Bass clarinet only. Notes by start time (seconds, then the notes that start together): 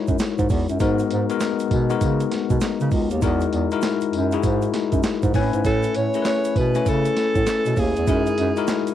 0.08 F#2
0.39 G#2
0.50 E2
0.69 F#2
0.80 G#2
1.11 G#2
1.71 B2
2.02 C#3
2.51 B2
2.81 C#3
2.92 C#2
3.11 D#2
3.23 E2
3.53 E2
4.13 F#2
4.43 G#2
4.93 F#2
5.23 G#2
5.34 A2
5.54 G#2
5.65 A2
5.95 A2
6.56 B2
6.87 C#3
7.36 A2
7.67 B2
7.77 D#2
7.97 E2
8.08 F#2
8.38 F#2